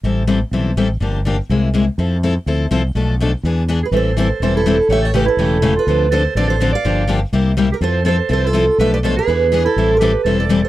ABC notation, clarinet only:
X:1
M:4/4
L:1/16
Q:"Swing" 1/4=247
K:Am
V:1 name="Clarinet"
z16 | z16 | z16 | z12 z2 ^G2 |
A4 A4 A2 E6 | ^c2 A2 G2 E8 F2- | F4 A4 A2 A4 d2- | d6 z8 G2 |
A4 A4 A2 F6 | B2 B2 A2 ^G8 E2- | E3 F G4 A2 A4 A2 |]